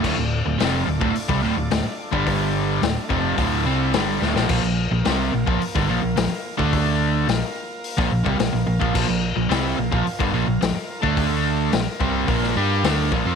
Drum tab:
CC |x---------------|----------------|x---------------|----------------|
HH |----o---o---o---|o---o---o---o---|----o---o---o---|o---o---o---o---|
SD |----o-------o---|----o-------o-oo|----o----o--o---|----o----o--o---|
BD |o------o-o-----o|o-----o-o-------|o------o-o-----o|o--------o-o---o|

CC |x---------------|----------------|
HH |----o---o---o---|o---o---o---o---|
SD |----o-------o---|----o----o--o---|
BD |o------o-o-----o|o-----o-o-----o-|